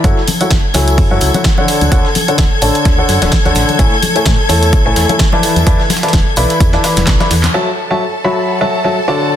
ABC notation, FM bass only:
X:1
M:4/4
L:1/16
Q:"Swing 16ths" 1/4=128
K:F#m
V:1 name="FM bass" clef=bass
F,, z3 F,,, z C,,2 F,, F,, C,, z4 D,, | D,, z3 D,,, z A,,, z D,, z F,, D,,, z D,, A,,, z | A,,, z3 A,, z E,,2 A,,, A,,, E,, z4 E,, | E,, z3 E,,, z B,,, z E,, z2 E,,, B,,, z E,, z |
z16 |]